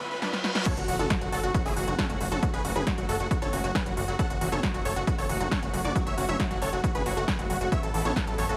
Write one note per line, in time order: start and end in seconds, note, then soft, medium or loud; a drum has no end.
0.00 reverse cymbal medium
0.00 riser medium
0.11 0.18 B4 medium
0.22 0.29 D4 medium
0.22 0.29 B4 loud
0.22 snare medium
0.33 0.40 B4 medium
0.33 snare medium
0.44 0.51 B4 medium
0.44 snare medium
0.55 0.62 B4 medium
0.55 snare medium
0.66 0.82 C#3 medium
0.66 0.70 F#3 medium
0.66 0.82 F#3 medium
0.66 0.82 A3 medium
0.66 0.82 F#4 medium
0.66 0.73 A4 medium
0.66 0.73 C#5 loud
0.66 kick loud
0.66 closed hi-hat medium
0.66 crash loud
0.66 impact medium
0.77 0.85 F#1 medium
0.77 0.84 F#4 medium
0.77 closed hi-hat medium
0.88 0.96 F#1 medium
0.88 1.04 C#3 medium
0.88 0.92 E3 medium
0.88 1.04 F#3 medium
0.88 1.04 A3 medium
0.88 1.04 F#4 medium
0.88 0.95 F#4 medium
0.88 0.96 F#4 medium
0.88 open hi-hat loud
0.99 1.07 F#1 medium
0.99 1.09 B3 medium
0.99 1.07 F#4 medium
0.99 1.06 A4 medium
0.99 1.07 A4 medium
0.99 closed hi-hat medium
0.99 mid tom medium
1.10 1.18 C#3 medium
1.10 1.18 F#3 medium
1.10 1.14 A3 medium
1.10 1.18 A3 medium
1.10 1.18 F#4 medium
1.10 kick loud
1.10 snare loud
1.10 closed hi-hat medium
1.21 1.29 F#1 medium
1.21 1.37 C#3 medium
1.21 1.25 F#3 loud
1.21 1.37 F#3 medium
1.21 1.37 A3 medium
1.21 1.28 F#4 medium
1.21 1.37 F#4 medium
1.21 1.29 F#4 medium
1.21 closed hi-hat medium
1.32 1.40 F#1 loud
1.32 1.42 F#2 loud
1.32 1.40 F#4 medium
1.32 1.40 A4 medium
1.32 1.40 A4 loud
1.32 open hi-hat loud
1.43 1.51 F#1 medium
1.43 1.51 C#3 medium
1.43 1.51 F#3 medium
1.43 1.51 A3 medium
1.43 1.50 F#4 loud
1.43 1.51 F#4 medium
1.43 closed hi-hat medium
1.54 1.70 C#3 medium
1.54 1.58 F#3 medium
1.54 1.70 F#3 medium
1.54 1.70 A3 medium
1.54 1.62 F#4 medium
1.54 1.70 F#4 medium
1.54 1.62 F#4 medium
1.54 kick loud
1.54 closed hi-hat medium
1.65 1.73 F#1 medium
1.65 1.72 C#4 medium
1.65 1.73 E4 medium
1.65 1.73 G#4 medium
1.65 1.73 G#4 loud
1.65 open hi-hat medium
1.76 1.84 F#1 loud
1.76 1.92 C#3 medium
1.76 1.80 E3 medium
1.76 1.92 F#3 medium
1.76 1.92 A3 loud
1.76 1.92 F#4 medium
1.76 1.84 F#4 medium
1.76 open hi-hat loud
1.87 1.95 F#1 loud
1.87 1.94 F#3 medium
1.87 1.95 F#4 medium
1.87 closed hi-hat medium
1.87 mid tom medium
1.99 2.06 C#3 medium
1.99 2.06 F#3 medium
1.99 2.06 A3 medium
1.99 2.02 A3 medium
1.99 2.06 F#4 medium
1.99 2.06 A4 medium
1.99 kick loud
1.99 snare loud
1.99 closed hi-hat medium
1.99 mid tom medium
2.09 2.17 F#1 medium
2.09 2.25 C#3 medium
2.09 2.25 F#3 medium
2.09 2.25 A3 medium
2.09 2.13 C#4 medium
2.09 2.25 F#4 medium
2.09 2.17 F#4 medium
2.09 closed hi-hat medium
2.21 2.28 F#1 loud
2.21 2.30 F#2 loud
2.21 2.28 F#4 medium
2.21 open hi-hat loud
2.31 2.39 F#1 medium
2.31 2.39 C#3 medium
2.31 2.39 F#3 medium
2.31 2.41 F#3 medium
2.31 2.39 A3 medium
2.31 2.39 F#4 medium
2.31 2.39 A4 medium
2.31 closed hi-hat medium
2.31 mid tom medium
2.43 2.58 C#3 medium
2.43 2.58 F#3 medium
2.43 2.46 F#3 medium
2.43 2.58 A3 medium
2.43 2.58 F#4 medium
2.43 2.50 F#4 medium
2.43 kick loud
2.43 closed hi-hat medium
2.53 2.61 F#1 medium
2.53 2.61 G#4 medium
2.53 2.61 B4 medium
2.53 closed hi-hat medium
2.65 2.72 F#1 loud
2.65 2.80 C#3 medium
2.65 2.80 F#3 medium
2.65 2.80 A3 medium
2.65 2.71 C#4 medium
2.65 2.72 F#4 medium
2.65 2.80 F#4 medium
2.65 2.72 F#4 medium
2.65 open hi-hat loud
2.76 2.83 F#1 medium
2.76 2.82 F#3 medium
2.76 2.83 G#4 medium
2.76 2.83 B4 medium
2.76 closed hi-hat medium
2.76 mid tom medium
2.87 2.94 C#3 medium
2.87 2.94 F#3 medium
2.87 2.94 A3 medium
2.87 2.91 A3 medium
2.87 2.94 F#4 medium
2.87 kick loud
2.87 snare loud
2.87 closed hi-hat medium
2.98 3.05 F#1 medium
2.98 3.13 C#3 medium
2.98 3.13 F#3 medium
2.98 3.07 F#3 loud
2.98 3.13 A3 medium
2.98 3.13 F#4 medium
2.98 3.05 F#4 medium
2.98 closed hi-hat medium
3.09 3.16 F#1 loud
3.09 3.18 F#2 loud
3.09 3.16 F#4 medium
3.09 3.16 A4 loud
3.09 3.16 A4 medium
3.09 open hi-hat loud
3.20 3.27 F#1 medium
3.20 3.27 C#3 medium
3.20 3.27 F#3 medium
3.20 3.29 F#3 medium
3.20 3.27 A3 medium
3.20 3.27 F#4 medium
3.20 closed hi-hat medium
3.31 3.46 C#3 medium
3.31 3.46 F#3 medium
3.31 3.35 F#3 medium
3.31 3.46 A3 medium
3.31 3.46 F#4 medium
3.31 3.38 F#4 medium
3.31 kick loud
3.31 closed hi-hat medium
3.42 3.50 F#1 medium
3.42 3.48 F#3 medium
3.42 3.49 A4 medium
3.42 3.49 C#5 medium
3.42 3.49 C#5 loud
3.42 closed hi-hat medium
3.42 mid tom medium
3.53 3.61 F#1 loud
3.53 3.68 C#3 medium
3.53 3.68 F#3 medium
3.53 3.68 A3 medium
3.53 3.59 C#4 medium
3.53 3.68 F#4 medium
3.53 3.60 F#4 medium
3.53 open hi-hat loud
3.64 3.72 F#1 medium
3.64 3.70 F#3 medium
3.64 3.71 F#4 medium
3.64 closed hi-hat medium
3.75 3.83 C#3 medium
3.75 3.83 F#3 medium
3.75 3.83 A3 medium
3.75 3.79 A3 medium
3.75 3.83 F#4 medium
3.75 3.82 G#4 medium
3.75 3.82 B4 loud
3.75 kick loud
3.75 snare loud
3.75 closed hi-hat medium
3.86 3.94 F#1 medium
3.86 4.01 C#3 medium
3.86 4.01 F#3 medium
3.86 3.92 F#3 medium
3.86 4.01 A3 medium
3.86 4.01 F#4 medium
3.86 3.93 F#4 medium
3.86 closed hi-hat medium
3.97 4.05 F#1 loud
3.97 4.07 F#2 loud
3.97 4.04 F#4 medium
3.97 open hi-hat loud
4.08 4.16 F#1 medium
4.08 4.16 C#3 medium
4.08 4.16 F#3 medium
4.08 4.18 F#3 medium
4.08 4.16 A3 medium
4.08 4.15 F#4 medium
4.08 4.16 F#4 medium
4.08 4.15 F#4 medium
4.08 closed hi-hat medium
4.19 4.35 C#3 medium
4.19 4.35 F#3 medium
4.19 4.23 F#3 medium
4.19 4.35 A3 medium
4.19 4.35 F#4 medium
4.19 4.26 A4 medium
4.19 4.26 F#5 loud
4.19 kick loud
4.19 closed hi-hat medium
4.30 4.38 F#1 medium
4.30 4.37 F#4 medium
4.30 closed hi-hat medium
4.41 4.49 F#1 loud
4.41 4.57 C#3 medium
4.41 4.45 E3 medium
4.41 4.57 F#3 medium
4.41 4.57 A3 loud
4.41 4.48 F#4 medium
4.41 4.57 F#4 medium
4.41 open hi-hat loud
4.52 4.60 F#1 medium
4.52 4.62 B3 medium
4.52 4.59 A4 medium
4.52 4.59 C#5 medium
4.52 closed hi-hat medium
4.52 mid tom medium
4.63 4.71 C#3 medium
4.63 4.71 F#3 medium
4.63 4.67 A3 medium
4.63 4.71 A3 medium
4.63 4.70 F#4 medium
4.63 4.71 F#4 medium
4.63 kick loud
4.63 snare loud
4.63 closed hi-hat medium
4.74 4.82 F#1 medium
4.74 4.90 C#3 medium
4.74 4.78 F#3 loud
4.74 4.90 F#3 medium
4.74 4.90 A3 medium
4.74 4.81 F#4 medium
4.74 4.90 F#4 medium
4.74 closed hi-hat medium
4.85 4.93 F#1 loud
4.85 4.95 F#2 loud
4.85 4.92 A4 medium
4.85 4.92 C#5 loud
4.85 4.92 C#5 medium
4.85 open hi-hat loud
4.96 5.04 F#1 medium
4.96 5.04 C#3 medium
4.96 5.04 F#3 medium
4.96 5.04 A3 medium
4.96 5.03 F#4 loud
4.96 5.03 F#4 medium
4.96 5.04 F#4 medium
4.96 closed hi-hat medium
5.07 5.23 C#3 medium
5.07 5.11 F#3 medium
5.07 5.23 F#3 medium
5.07 5.23 A3 medium
5.07 5.14 F#4 medium
5.07 5.15 F#4 medium
5.07 5.23 F#4 medium
5.07 kick loud
5.07 closed hi-hat medium
5.18 5.26 F#1 medium
5.18 5.25 C#4 medium
5.18 5.26 A4 medium
5.18 5.26 C#5 medium
5.18 open hi-hat medium
5.29 5.37 F#1 loud
5.29 5.45 C#3 loud
5.29 5.33 E3 medium
5.29 5.45 F#3 medium
5.29 5.45 A3 medium
5.29 5.45 F#4 medium
5.29 5.37 F#4 medium
5.29 open hi-hat loud
5.40 5.48 F#1 medium
5.40 5.47 F#3 medium
5.40 5.48 F#4 medium
5.40 closed hi-hat medium
5.40 mid tom medium
5.51 5.59 C#3 medium
5.51 5.59 F#3 medium
5.51 5.55 A3 medium
5.51 5.59 A3 medium
5.51 5.59 F#4 medium
5.51 5.59 A4 medium
5.51 5.59 C#5 loud
5.51 kick loud
5.51 snare loud
5.51 closed hi-hat medium
5.51 mid tom medium
5.62 5.70 F#1 medium
5.62 5.78 C#3 medium
5.62 5.78 F#3 medium
5.62 5.78 A3 medium
5.62 5.66 C#4 medium
5.62 5.78 F#4 medium
5.62 5.70 F#4 medium
5.62 closed hi-hat medium
5.73 5.81 F#1 loud
5.73 5.83 F#2 loud
5.73 5.81 F#4 medium
5.73 open hi-hat loud
5.84 5.92 F#1 medium
5.84 5.92 C#3 medium
5.84 5.94 F#3 medium
5.84 5.92 F#3 medium
5.84 5.92 A3 medium
5.84 5.92 F#4 medium
5.84 5.92 D5 medium
5.84 closed hi-hat medium
5.84 mid tom medium
5.96 6.11 C#3 medium
5.96 5.99 F#3 medium
5.96 6.11 F#3 medium
5.96 6.11 A3 medium
5.96 6.03 F#4 medium
5.96 6.11 F#4 medium
5.96 6.03 F#4 medium
5.96 kick loud
5.96 closed hi-hat medium
6.06 6.14 F#1 medium
6.06 6.14 C#5 medium
6.06 6.14 E5 medium
6.06 closed hi-hat medium
6.17 6.25 F#1 loud
6.17 6.33 C#3 medium
6.17 6.33 F#3 medium
6.17 6.33 A3 medium
6.17 6.24 C#4 medium
6.17 6.25 F#4 medium
6.17 6.33 F#4 medium
6.17 6.25 F#4 medium
6.17 open hi-hat loud
6.29 6.36 F#1 medium
6.29 6.35 F#3 medium
6.29 6.36 C#5 medium
6.29 6.36 E5 medium
6.29 closed hi-hat soft
6.29 mid tom medium
6.40 6.47 C#3 medium
6.40 6.47 F#3 medium
6.40 6.43 A3 medium
6.40 6.47 A3 medium
6.40 6.47 F#4 medium
6.40 6.48 F#4 medium
6.40 kick loud
6.40 snare loud
6.40 closed hi-hat medium
6.51 6.58 F#1 medium
6.51 6.66 C#3 medium
6.51 6.66 F#3 medium
6.51 6.60 F#3 loud
6.51 6.66 A3 medium
6.51 6.66 F#4 medium
6.51 6.58 F#4 medium
6.51 closed hi-hat medium
6.62 6.69 F#1 loud
6.62 6.71 F#2 loud
6.62 6.69 A4 medium
6.62 6.69 C#5 medium
6.62 open hi-hat loud
6.73 6.80 F#1 medium
6.73 6.81 C#3 medium
6.73 6.80 F#3 medium
6.73 6.82 F#3 medium
6.73 6.80 A3 medium
6.73 6.80 F#4 medium
6.73 closed hi-hat medium
6.84 6.99 C#3 medium
6.84 6.99 F#3 medium
6.84 6.88 F#3 medium
6.84 6.99 A3 medium
6.84 6.99 F#4 medium
6.84 6.91 F#4 medium
6.84 kick loud
6.84 closed hi-hat medium
6.95 7.02 F#1 medium
6.95 7.01 F#3 medium
6.95 7.02 G#4 medium
6.95 7.02 B4 loud
6.95 closed hi-hat soft
6.95 mid tom medium
7.06 7.13 F#1 loud
7.06 7.21 C#3 medium
7.06 7.21 F#3 medium
7.06 7.12 F#3 loud
7.06 7.21 A3 medium
7.06 7.21 F#4 medium
7.06 7.13 F#4 medium
7.06 open hi-hat loud
7.17 7.24 F#1 medium
7.17 7.23 A3 loud
7.17 7.24 F#4 medium
7.17 closed hi-hat soft
7.28 7.36 C#3 medium
7.28 7.37 C#3 medium
7.28 7.36 F#3 medium
7.28 7.36 A3 medium
7.28 7.36 F#4 medium
7.28 7.35 G#4 medium
7.28 7.35 B4 loud
7.28 kick loud
7.28 snare loud
7.28 closed hi-hat medium
7.39 7.46 F#1 medium
7.39 7.54 C#3 medium
7.39 7.54 F#3 medium
7.39 7.54 A3 medium
7.39 7.45 A3 medium
7.39 7.54 F#4 medium
7.39 7.46 F#4 medium
7.39 closed hi-hat medium
7.50 7.57 F#1 loud
7.50 7.54 F#3 medium
7.50 7.57 F#4 medium
7.50 open hi-hat loud
7.61 7.69 F#1 medium
7.61 7.67 C#3 medium
7.61 7.69 C#3 medium
7.61 7.69 F#3 medium
7.61 7.69 A3 medium
7.61 7.68 F#4 medium
7.61 7.69 F#4 medium
7.61 closed hi-hat medium
7.72 7.87 C#3 medium
7.72 7.76 F#3 medium
7.72 7.88 A3 medium
7.72 7.88 B3 medium
7.72 7.88 E4 medium
7.72 7.79 C#5 medium
7.72 7.79 E5 loud
7.72 kick loud
7.72 closed hi-hat medium
7.83 7.91 A1 medium
7.83 7.90 A4 medium
7.83 closed hi-hat medium
7.94 8.02 A1 loud
7.94 8.10 C#3 medium
7.94 7.98 E3 medium
7.94 8.10 A3 medium
7.94 8.10 B3 medium
7.94 8.10 E4 medium
7.94 8.01 A4 medium
7.94 open hi-hat loud
8.05 8.13 A1 medium
8.05 8.15 B3 medium
8.05 8.12 A4 medium
8.05 8.12 C#5 medium
8.05 closed hi-hat medium
8.05 mid tom medium
8.16 8.24 C#3 medium
8.16 8.24 A3 medium
8.16 8.20 A3 medium
8.16 8.24 B3 medium
8.16 8.24 E4 medium
8.16 8.23 A4 medium
8.16 kick loud
8.16 snare loud
8.16 closed hi-hat medium
8.27 8.35 A1 medium
8.27 8.43 C#3 medium
8.27 8.31 F#3 medium
8.27 8.43 A3 medium
8.27 8.43 B3 medium
8.27 8.43 E4 medium
8.27 8.34 A4 medium
8.27 closed hi-hat soft
8.38 8.46 A1 loud
8.38 8.48 F#2 loud
8.38 8.45 A4 medium
8.38 8.45 C#5 medium
8.38 8.45 C#5 loud
8.38 open hi-hat loud
8.49 8.57 A1 medium
8.49 8.57 C#3 medium
8.49 8.57 A3 medium
8.49 8.57 B3 medium
8.49 8.57 E4 medium
8.49 8.56 F#4 loud
8.49 8.56 A4 medium
8.49 closed hi-hat medium